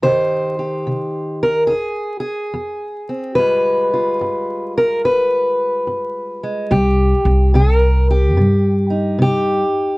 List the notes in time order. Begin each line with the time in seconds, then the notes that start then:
0.02 C3 D#3 D#4 G4 C5
0.59 G4
0.87 C3
1.43 A#4
1.67 F2 G#4
2.20 G#4
2.54 F2
3.09 C4
3.35 G2 G3 G#3 F4 B4
3.94 F4
4.21 G2
4.78 A#4
5.05 G2 B4
5.87 G2
6.43 G#3
6.71 C2 C3 G4
7.25 C2
7.54 C3 A#4
8.10 G4
8.37 G2 C3
8.90 D#4
9.19 C3 G4